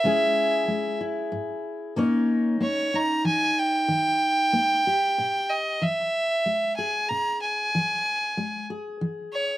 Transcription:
<<
  \new Staff \with { instrumentName = "Fiddle" } { \time 3/4 \key e \lydian \tempo 4 = 94 e''4. r4. | r4 cis''8 ais''8 gis''8 g''8~ | g''2~ g''8 dis''8 | e''4. gis''8 ais''8 gis''8~ |
gis''4. r4 cis''8 | }
  \new Staff \with { instrumentName = "Steel-string acoustic guitar" } { \time 3/4 \key e \lydian << { <gis cis' e' gis'>4. e'4. | <ais cis' dis' cis''>4. dis'4.~ | dis'4. g'4. | r4. gis'4. |
r4. gis'4. | } \\ { cis4 gis4 gis,4 | ais,4 ais4 e4 | dis4 ais4 ais,4 | e4 gis4 b,4 |
e4 gis4 e4 | } >> }
>>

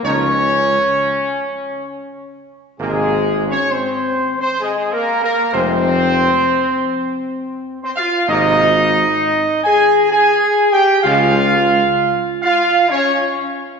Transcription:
<<
  \new Staff \with { instrumentName = "Trumpet section" } { \time 3/4 \key aes \major \tempo 4 = 65 des''2~ des''8 r8 | aes'8. des''16 c''8. c''16 \tuplet 3/2 { aes'8 bes'8 bes'8 } | c''2~ \tuplet 3/2 { c''8. c''16 f''8 } | ees''4. aes''8 \tuplet 3/2 { aes''4 g''8 } |
f''4. f''8 des''8 r8 | }
  \new Staff \with { instrumentName = "French horn section" } { \time 3/4 \key aes \major des'2~ des'8 r8 | aes8. des'16 c'8. c'16 \tuplet 3/2 { aes8 bes8 bes8 } | c'2~ \tuplet 3/2 { c'8. c'16 f'8 } | ees'4. aes'8 \tuplet 3/2 { aes'4 g'8 } |
f'4. f'8 des'8 r8 | }
  \new Staff \with { instrumentName = "Trombone section" } { \clef bass \time 3/4 \key aes \major <f ees'>8 r2 r8 | <c bes>8 r2 r8 | <c aes>8 r2 r8 | <c bes>8 r2 r8 |
<des aes>8 r2 r8 | }
  \new Staff \with { instrumentName = "Tuba" } { \clef bass \time 3/4 \key aes \major des,4 r2 | aes,,4 r2 | f,,4 r2 | aes,,4 r2 |
des,4 r2 | }
>>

